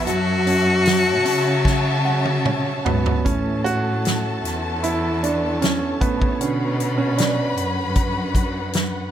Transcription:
Already playing: string section F#4 E5
0.06 cello section F#2, grand piano F#3, cello F#4, violin section F#4 E5 A5, string section C#5 A5, hi-hat pedal, open hi-hat
0.46 grand piano C#4, hi-hat pedal, open hi-hat
0.85 grand piano F#3, snare, hi-hat pedal, open hi-hat
1.25 cello section C#3, grand piano C#4, snare, hi-hat pedal, open hi-hat
1.65 kick, snare
2.05 grand piano F#3 F#5
2.25 high tom
2.46 grand piano C#4 C#5, mid tom
2.85 cello section G#2, grand piano F#3 B3, floor tom
3.06 floor tom
3.25 cello section A2, grand piano E3 A3 C#4, string section E4 A4 C#5 A5, violin section A4 A5, kick, closed hi-hat
3.64 grand piano F#4, closed hi-hat
4.05 snare, closed hi-hat
4.44 cello section E2, snare, closed hi-hat
4.83 grand piano E4, closed hi-hat
5.23 grand piano D4, closed hi-hat
5.62 grand piano C#4, snare, closed hi-hat
6.01 cello section A2, grand piano B3, kick, closed hi-hat
6.22 kick
6.40 cello section B2, grand piano D3 B3 C#4, string section D3 B4 F#5, violin section B4 B5, closed hi-hat
6.80 closed hi-hat
6.98 grand piano C#4
7.18 grand piano D4, snare, closed hi-hat
7.57 cello section F#2, closed hi-hat
7.95 kick, closed hi-hat
8.35 kick, closed hi-hat
8.73 snare, closed hi-hat

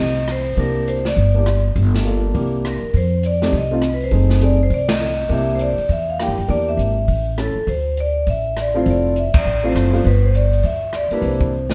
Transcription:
Already playing: upright bass C2, vibraphone D#5
0.28 vibraphone C5, cross-stick, closed hi-hat
0.46 open hi-hat
0.57 upright bass C2, grand piano A#3 D4 E4 G4, vibraphone A#4, kick, open hi-hat
0.88 vibraphone C5, closed hi-hat
1.05 vibraphone D5, snare, open hi-hat
1.16 upright bass G1, kick, open hi-hat
1.34 grand piano A#3 D4 E4 G4
1.46 cross-stick, closed hi-hat
1.76 upright bass G1, kick, open hi-hat
1.95 snare
2.05 grand piano A#3 D4 F4 A4, closed hi-hat
2.34 upright bass C2, grand piano A#3 D4 E4 G4, kick, open hi-hat
2.65 vibraphone A#4, cross-stick, closed hi-hat
2.82 muted upright bass stroke
2.94 upright bass F2, vibraphone C5, kick, open hi-hat
3.23 vibraphone D5, closed hi-hat
3.42 grand piano A3 C4 D#4 G4, snare, open hi-hat
3.53 upright bass C2, kick, open hi-hat
3.57 vibraphone D#5
3.71 grand piano A3 C4 D#4 F4
3.82 cross-stick, closed hi-hat
3.94 vibraphone B4
4.00 vibraphone C5, open hi-hat
4.11 upright bass F#1, grand piano A3 C4 D#4 G#4, kick, open hi-hat
4.30 snare
4.41 grand piano A3 C4 D#4 G#4, vibraphone D5, closed hi-hat
4.63 vibraphone C5
4.70 upright bass C2, vibraphone D5, kick, open hi-hat
4.89 vibraphone D#5, snare, ride
5.18 open hi-hat
5.29 upright bass C2, grand piano A#3 D4 E4 G4, vibraphone E5, kick, open hi-hat
5.55 vibraphone C5
5.59 vibraphone D5, closed hi-hat
5.78 muted upright bass stroke, open hi-hat
5.89 upright bass E2, vibraphone E5, kick, open hi-hat
6.10 vibraphone F5
6.19 grand piano A#3 D4 E4 G4, vibraphone G5, cross-stick, closed hi-hat
6.28 upright bass G2
6.38 upright bass F2, open hi-hat
6.48 upright bass E2, grand piano A#3 D4 E4 G4, vibraphone D5, kick, open hi-hat
6.69 vibraphone E5
6.77 upright bass G#1, closed hi-hat
7.08 upright bass A1, kick, open hi-hat
7.38 grand piano A3 C#4 E4 A4, vibraphone A4, cross-stick, closed hi-hat
7.55 muted upright bass stroke
7.67 upright bass D2, vibraphone C5, kick, open hi-hat
7.97 vibraphone D5, closed hi-hat
8.27 upright bass A1, vibraphone E5, kick, open hi-hat
8.57 cross-stick, closed hi-hat
8.61 vibraphone D5
8.74 grand piano A3 C4 E4 F4
8.79 vibraphone C5
8.86 upright bass F1, kick, open hi-hat
8.91 vibraphone D5
9.16 vibraphone E5, closed hi-hat
9.34 muted upright bass stroke, kick, ride
9.38 vibraphone D5
9.45 upright bass A1
9.63 grand piano A3 C4 E4 F4, vibraphone C5
9.74 upright bass F#1, cross-stick, closed hi-hat
9.92 grand piano A3 B3 D4 F4, open hi-hat
10.04 upright bass G1, vibraphone B4, kick, open hi-hat
10.25 vibraphone C5
10.35 vibraphone D5, closed hi-hat
10.53 open hi-hat
10.63 upright bass D2, vibraphone E5, kick, open hi-hat
10.93 vibraphone D5, cross-stick, closed hi-hat
11.11 grand piano G3 A#3 D4 E4, vibraphone B4, muted upright bass stroke, open hi-hat
11.22 upright bass C2, vibraphone C5, kick, open hi-hat
11.41 kick
11.70 snare

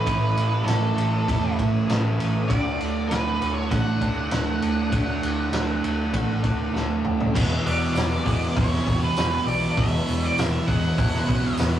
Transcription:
Already playing: clean electric guitar A3 C#4
0.00 overdriven electric guitar A2, lead electric guitar B4
0.05 overdriven electric guitar E3 A3 C#4 E4, clean electric guitar E3, kick, ride
0.37 fingered electric bass A1, ride
0.64 fingered electric bass A1, distorted electric guitar A2, overdriven electric guitar E3 A3 C#4, clean electric guitar C#4, lead electric guitar A4, ride
0.69 overdriven electric guitar E4, snare
0.96 fingered electric bass A1, clean electric guitar E3, overdriven electric guitar A3 C#4 E4, ride
1.27 fingered electric bass E1, overdriven electric guitar A2 E3 A3 C#4 E4, clean electric guitar A3, kick, ride
1.58 fingered electric bass A1, distorted electric guitar E3 A3, clean electric guitar C#4, kick, ride
1.88 fingered electric bass A1, distorted electric guitar A2, overdriven electric guitar E3 A3 C#4 E4, clean electric guitar G#4, snare, ride
2.19 fingered electric bass A1, clean electric guitar C#4, ride
2.48 fingered electric bass D2, overdriven electric guitar D3 A3 D4 F#4, clean electric guitar F#3, lead electric guitar D5, kick, ride
2.80 fingered electric bass D2, ride
3.09 fingered electric bass D2, overdriven electric guitar D3 A3 D4 F#4, clean electric guitar D4, lead electric guitar B4, snare, ride
3.40 fingered electric bass D2, clean electric guitar F#3, overdriven electric guitar A3 D4 F#4, ride
3.53 lead electric guitar C#5
3.69 fingered electric bass A1, overdriven electric guitar D3 A3 D4 F#4, clean electric guitar B3, lead electric guitar F#5, kick, ride
4.01 fingered electric bass D2, distorted electric guitar A3 D4, clean electric guitar D4, kick, ride
4.30 fingered electric bass D2, overdriven electric guitar D3 A3 D4 F#4, clean electric guitar A4, snare, ride
4.62 fingered electric bass D2, clean electric guitar D4, ride
4.91 fingered electric bass D2, overdriven electric guitar D3 A3 D4 F#4, clean electric guitar F#3, kick, ride
5.22 fingered electric bass D2, ride
5.51 fingered electric bass D2, overdriven electric guitar D3 A3 D4 F#4, clean electric guitar D4, snare, ride
5.82 fingered electric bass D2, clean electric guitar F#3, overdriven electric guitar A3 D4 F#4, ride
6.12 fingered electric bass A1, overdriven electric guitar D3 A3 D4 F#4, clean electric guitar B3, kick, ride
6.43 fingered electric bass D2, distorted electric guitar A3 D4, clean electric guitar D4, kick, ride
6.72 fingered electric bass D2, overdriven electric guitar D3 A3 D4 F#4, clean electric guitar A4, snare
7.05 fingered electric bass D2, clean electric guitar D4, mid tom
7.20 floor tom
7.34 fingered electric bass E1, overdriven electric guitar E2 B2 E3 G#3 B3 G#4, clean electric guitar F#3, kick, crash
7.66 fingered electric bass E1, clean electric guitar F#3, lead electric guitar D5, open hi-hat
7.95 fingered electric bass E1, distorted electric guitar E2 B2 E3, clean electric guitar E4, snare, open hi-hat, tambourine
8.24 fingered electric bass E1, overdriven electric guitar E2 B2 E3 G#3 B3 G#4, clean electric guitar G#4, kick, open hi-hat
8.56 fingered electric bass E1, distorted electric guitar E2 B2 E3, clean electric guitar E4, lead electric guitar C#5, kick, open hi-hat
8.74 snare
8.86 fingered electric bass E1, distorted electric guitar B2 E3, clean electric guitar F#3, kick, open hi-hat
9.03 lead electric guitar B4
9.17 fingered electric bass E1, clean electric guitar B3, snare, open hi-hat, tambourine
9.45 fingered electric bass B1, distorted electric guitar B2 E3, clean electric guitar F#3, lead electric guitar D5, open hi-hat
9.76 fingered electric bass E1, overdriven electric guitar E2 B2 E3 G#3 B3 G#4, clean electric guitar F#3, lead electric guitar E5, kick, open hi-hat
10.07 fingered electric bass E1, clean electric guitar F#3, open hi-hat
10.24 lead electric guitar D5
10.37 fingered electric bass E1, distorted electric guitar E2 B2, clean electric guitar E4, lead electric guitar E5, snare, open hi-hat, tambourine
10.41 distorted electric guitar E3
10.67 fingered electric bass E1, overdriven electric guitar E2 B2 E3 G#3 B3 G#4, clean electric guitar G#4, lead electric guitar F#5, kick, open hi-hat
10.98 fingered electric bass E1, distorted electric guitar E2 B2 E3, clean electric guitar E4, kick, open hi-hat
11.15 snare
11.29 fingered electric bass B1, distorted electric guitar B2 E3, clean electric guitar F#3, kick, open hi-hat
11.57 fingered electric bass E2, clean electric guitar B3, snare, open hi-hat, tambourine

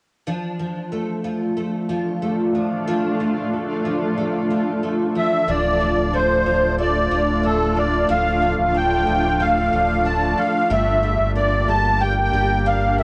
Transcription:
0.26 twelve-string acoustic guitar F3 D4, ambient pad A3 D4 F4
0.59 twelve-string acoustic guitar F3
0.92 twelve-string acoustic guitar A3
1.24 twelve-string acoustic guitar F3
1.57 twelve-string acoustic guitar A3
1.89 twelve-string acoustic guitar F3
2.22 twelve-string acoustic guitar A3
2.55 twelve-string acoustic guitar F3
2.87 twelve-string acoustic guitar F3 D4
3.20 twelve-string acoustic guitar F3
3.53 twelve-string acoustic guitar A3
3.85 twelve-string acoustic guitar F3
4.18 twelve-string acoustic guitar A3
4.50 twelve-string acoustic guitar F3
4.83 twelve-string acoustic guitar A3
5.15 twelve-string acoustic guitar F3, accordion E5
5.47 sub bass D1, twelve-string acoustic guitar F3 D4, ambient pad A3 D4 F4, accordion D5
5.81 twelve-string acoustic guitar F3
5.97 sub bass D1
6.13 twelve-string acoustic guitar A3, accordion C5
6.45 sub bass D1, twelve-string acoustic guitar F3
6.79 twelve-string acoustic guitar A3, accordion D5
7.11 sub bass D1, twelve-string acoustic guitar F3
7.43 twelve-string acoustic guitar D4, accordion A4
7.76 twelve-string acoustic guitar A3, accordion D5
8.09 sub bass D1, twelve-string acoustic guitar F3 D4, accordion F5
8.42 twelve-string acoustic guitar F3
8.58 sub bass D1
8.74 twelve-string acoustic guitar A3, accordion G5
9.07 sub bass D1, twelve-string acoustic guitar F3
9.40 twelve-string acoustic guitar A3, accordion F5
9.72 sub bass D1, twelve-string acoustic guitar F3
10.05 twelve-string acoustic guitar D4, accordion A5
10.38 twelve-string acoustic guitar A3, accordion F5
10.70 sub bass G1, twelve-string acoustic guitar G3 D4, ambient pad A#3 D4 G4, accordion E5
11.03 twelve-string acoustic guitar G3
11.19 sub bass G1
11.36 twelve-string acoustic guitar A#3, accordion D5
11.68 sub bass G1, twelve-string acoustic guitar G3, accordion A5
12.00 twelve-string acoustic guitar A#3, accordion G5
12.32 sub bass G1, twelve-string acoustic guitar G3
12.66 twelve-string acoustic guitar D4, accordion F5
12.98 twelve-string acoustic guitar A#3, accordion E5

